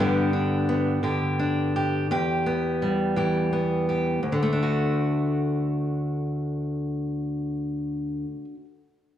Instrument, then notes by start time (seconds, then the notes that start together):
steel-string acoustic guitar
Already playing: G2 D3
0.00 B3 D4 G4
0.33 D4
0.69 B3
1.03 D3 G4
1.39 D4
1.76 G4
2.11 E2 G4
2.46 B3
2.82 G3
3.16 E3 G4
3.53 B3
3.89 G4
4.23 D2
4.32 D3
4.43 A3
4.53 D4
4.63 F#4